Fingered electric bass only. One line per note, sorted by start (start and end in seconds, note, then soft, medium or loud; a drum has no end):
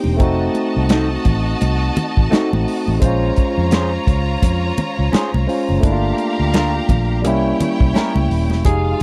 0.05 0.20 E1 medium
0.20 0.48 F1 medium
0.77 1.16 C2 medium
1.26 1.54 A1 medium
1.62 1.89 C2 medium
2.17 2.29 A1 medium
2.53 2.64 A1 medium
2.88 2.99 A1 medium
3.03 3.30 A#1 medium
3.58 3.97 F2 medium
4.07 4.35 C#2 medium
4.43 4.70 F2 medium
4.99 5.10 C#2 medium
5.13 muted fingered electric bass stroke soft
5.34 5.46 C2 medium
5.70 5.81 F#1 medium
5.83 6.11 G1 loud
6.40 6.79 D2 medium
6.90 7.24 A#1 medium
7.24 7.52 C2 loud
7.81 7.92 C2 medium
8.15 8.27 C#2 medium
8.29 8.50 D#1 medium
8.50 8.62 E1 medium
8.66 8.93 F1 medium